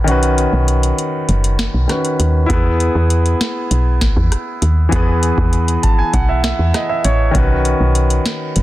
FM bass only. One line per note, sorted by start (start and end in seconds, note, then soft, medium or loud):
0.07 0.47 B1 loud
0.53 0.93 B1 loud
1.29 1.68 F#1 loud
1.74 1.87 B1 medium
2.19 2.46 D#2 medium
2.50 2.89 E2 loud
2.95 3.35 E2 loud
3.71 4.11 B1 medium
4.17 4.30 E2 loud
4.62 4.88 D#2 medium
4.92 5.32 E2 loud
5.38 5.77 E2 medium
6.13 6.53 B1 medium
6.59 6.72 E2 medium
7.05 7.31 A1 medium
7.35 7.74 B1 loud
7.80 8.20 B1 medium
8.56 8.63 F#1 loud